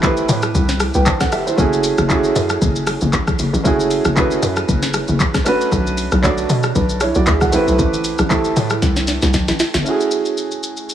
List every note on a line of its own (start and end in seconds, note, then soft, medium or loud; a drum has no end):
0.00 0.24 A1 medium
0.00 1.56 A3 medium
0.00 0.02 C4 medium
0.00 0.86 C4 medium
0.00 0.03 E4 medium
0.00 0.81 E4 medium
0.00 0.04 G4 medium
0.00 0.05 B4 loud
0.00 kick loud
0.00 clap medium
0.00 shaker medium
0.04 0.81 G4 medium
0.04 0.82 B4 loud
0.17 shaker medium
0.29 0.51 A2 loud
0.29 open hi-hat medium
0.29 shaker loud
0.42 cross-stick loud
0.42 shaker medium
0.55 0.89 C2 loud
0.55 kick loud
0.55 shaker medium
0.69 snare medium
0.69 shaker medium
0.80 cross-stick medium
0.80 open hi-hat medium
0.80 shaker medium
0.94 1.05 C2 medium
0.94 1.06 B4 medium
0.94 1.06 G5 medium
0.94 shaker soft
1.06 1.20 C5 medium
1.06 1.20 A5 medium
1.06 kick medium
1.06 clap loud
1.06 shaker medium
1.20 1.32 A4 medium
1.20 1.32 F#5 medium
1.20 kick medium
1.20 cross-stick loud
1.20 snare medium
1.20 shaker soft
1.32 1.46 G4 medium
1.32 1.46 E5 medium
1.32 cross-stick loud
1.32 open hi-hat medium
1.32 shaker loud
1.47 1.57 E4 medium
1.47 1.71 C5 medium
1.47 shaker medium
1.56 1.93 F#1 loud
1.56 2.00 A3 medium
1.56 2.00 C#4 medium
1.56 2.01 E4 medium
1.56 2.01 F#4 medium
1.56 2.02 G#4 medium
1.56 kick loud
1.56 shaker medium
1.73 shaker medium
1.84 open hi-hat medium
1.84 shaker medium
1.98 2.30 F#1 medium
1.98 cross-stick medium
1.98 shaker medium
2.08 2.92 A3 medium
2.08 2.93 C#4 medium
2.08 2.93 E4 medium
2.08 2.94 F#4 medium
2.08 2.94 G#4 loud
2.08 kick loud
2.08 clap medium
2.08 shaker medium
2.24 shaker medium
2.36 2.58 F#2 loud
2.36 open hi-hat medium
2.36 shaker loud
2.49 cross-stick loud
2.49 shaker medium
2.62 2.96 F#1 loud
2.62 kick loud
2.62 shaker medium
2.76 shaker medium
2.87 cross-stick loud
2.87 open hi-hat medium
2.87 shaker medium
3.01 3.12 F#1 medium
3.01 shaker medium
3.13 3.35 A1 loud
3.13 kick medium
3.13 clap medium
3.13 shaker medium
3.27 kick medium
3.27 cross-stick loud
3.27 shaker soft
3.39 3.51 F#1 medium
3.39 open hi-hat medium
3.39 shaker medium
3.53 3.67 A1 loud
3.53 shaker medium
3.63 3.99 F#1 loud
3.63 4.07 A3 medium
3.63 4.07 C#4 medium
3.63 4.08 E4 medium
3.63 4.08 F#4 medium
3.63 4.09 G#4 medium
3.63 kick loud
3.63 shaker medium
3.80 shaker medium
3.91 open hi-hat medium
3.91 shaker medium
4.05 4.37 F#1 medium
4.05 cross-stick medium
4.05 shaker medium
4.15 4.99 A3 medium
4.15 5.00 C#4 medium
4.15 5.00 E4 medium
4.15 5.01 F#4 medium
4.15 5.01 B4 loud
4.15 kick medium
4.15 clap medium
4.15 shaker medium
4.31 shaker medium
4.43 4.65 F#2 loud
4.43 open hi-hat medium
4.43 shaker loud
4.56 cross-stick loud
4.56 shaker medium
4.69 5.03 F#1 loud
4.69 kick loud
4.69 shaker medium
4.82 snare medium
4.82 shaker medium
4.94 cross-stick loud
4.94 open hi-hat medium
4.94 shaker loud
5.08 5.19 F#1 medium
5.08 shaker soft
5.20 kick medium
5.20 clap medium
5.20 shaker medium
5.34 kick medium
5.34 cross-stick loud
5.34 snare medium
5.34 shaker soft
5.44 6.08 A3 medium
5.44 6.09 C#4 medium
5.44 6.09 D4 medium
5.44 6.10 F#4 medium
5.44 6.10 B4 loud
5.44 cross-stick loud
5.44 open hi-hat medium
5.44 shaker medium
5.61 shaker medium
5.72 6.06 B1 loud
5.72 kick loud
5.72 shaker medium
5.87 shaker medium
5.97 open hi-hat medium
5.97 shaker loud
6.12 6.44 B1 loud
6.12 cross-stick medium
6.12 shaker medium
6.22 7.06 A3 medium
6.22 6.75 D4 medium
6.22 6.76 F#4 medium
6.22 6.75 C#5 medium
6.22 6.77 D5 loud
6.22 kick loud
6.22 clap medium
6.22 shaker medium
6.38 shaker medium
6.50 6.72 B2 loud
6.50 open hi-hat medium
6.50 shaker loud
6.63 cross-stick loud
6.63 shaker medium
6.75 7.10 B1 loud
6.75 7.01 D4 medium
6.75 7.00 B4 medium
6.75 kick loud
6.75 shaker medium
6.89 shaker medium
7.00 7.15 E4 medium
7.00 7.15 C#5 medium
7.00 cross-stick loud
7.00 open hi-hat medium
7.00 shaker medium
7.15 7.26 B1 loud
7.15 7.27 F#4 medium
7.15 7.27 D5 medium
7.15 shaker soft
7.26 7.49 D2 loud
7.26 7.41 G#4 medium
7.26 7.41 E5 medium
7.26 kick medium
7.26 clap loud
7.26 shaker medium
7.41 7.66 A4 medium
7.41 7.66 F#5 medium
7.41 kick medium
7.41 cross-stick loud
7.41 shaker soft
7.51 7.65 A1 medium
7.51 8.15 A3 medium
7.51 8.16 C4 medium
7.51 8.16 E4 medium
7.51 8.17 G4 medium
7.51 8.17 B4 loud
7.51 open hi-hat medium
7.51 shaker loud
7.67 7.77 B1 medium
7.67 shaker medium
7.79 8.13 A1 loud
7.79 kick loud
7.79 shaker medium
7.93 shaker medium
8.04 open hi-hat medium
8.04 shaker medium
8.18 8.51 A1 loud
8.18 cross-stick medium
8.18 shaker medium
8.29 9.13 A3 medium
8.29 9.14 C4 medium
8.29 9.14 E4 medium
8.29 9.14 G4 medium
8.29 9.15 A4 medium
8.29 kick medium
8.29 clap medium
8.29 shaker medium
8.44 shaker medium
8.56 8.79 A2 loud
8.56 open hi-hat medium
8.56 shaker loud
8.70 cross-stick loud
8.70 shaker medium
8.82 9.17 C2 medium
8.82 kick loud
8.82 snare medium
8.82 shaker medium
8.96 snare medium
8.96 shaker medium
9.07 snare medium
9.07 open hi-hat medium
9.07 shaker medium
9.22 9.32 C2 loud
9.22 snare medium
9.22 shaker medium
9.33 9.46 B1 loud
9.33 kick medium
9.33 snare medium
9.33 shaker medium
9.48 9.58 A1 medium
9.48 snare medium
9.48 shaker soft
9.60 snare loud
9.60 open hi-hat medium
9.60 shaker medium
9.74 9.84 G1 medium
9.74 snare loud
9.74 shaker medium
9.82 10.94 A3 medium
9.82 10.94 C#4 medium
9.82 10.94 E4 medium
9.82 shaker medium
9.88 10.94 F#4 medium
9.88 10.94 G#4 medium
10.00 shaker medium
10.11 shaker medium
10.25 shaker soft
10.37 shaker medium
10.51 shaker soft
10.63 shaker loud
10.77 shaker soft
10.89 shaker medium